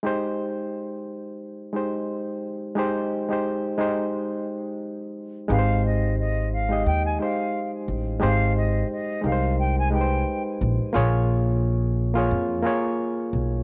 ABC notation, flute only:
X:1
M:4/4
L:1/16
Q:"Swing 16ths" 1/4=88
K:Ab
V:1 name="Flute"
z16 | z16 | f2 e2 e2 f2 g a f3 z3 | f2 e2 e2 f2 g a g3 z3 |
z16 |]